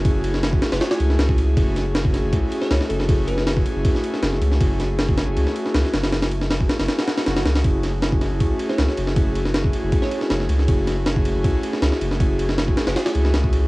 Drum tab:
RD |x-x-x-xxxxx-x-x-|x-x-x-x-x-x-x-x-|x-x-x-x-x-x-x-x-|x-x-x-x-x-x-x-xx|
SD |---oo-oooo-oo---|--o-o-o----ooo-o|---oo----o-ooo-o|--o-o-o--o-ooooo|
BD |o----o-------o--|o----o--o-------|o----o--o-------|o----o----------|

RD |xxx-x-xxxxxxxxxx|x-x-x-x-x-x-x-x-|x-x-x-x-x-x-x-x-|x-x-x-x-x-x-x-x-|
SD |oo-oo-oooooooooo|--o-o-o----ooo-o|---oo----o-ooo-o|--o-o------ooo-o|
BD |-----o----------|o----o--o-------|o----o--o-------|o----o--o-------|

RD |x-x-x-xxxxx-x-x-|
SD |---oo-oooo-oo---|
BD |o----o-------o--|